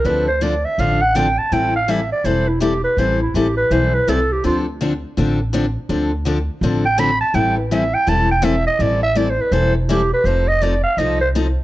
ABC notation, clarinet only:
X:1
M:4/4
L:1/8
Q:"Swing" 1/4=165
K:Am
V:1 name="Clarinet"
B c d e f ^f g a | g f e d c E G B | c E G B c B A G | F z6 z |
z4 z g b a | g B e g a g e ^d | d e (3d c B c E G B | c _e d f e c z2 |]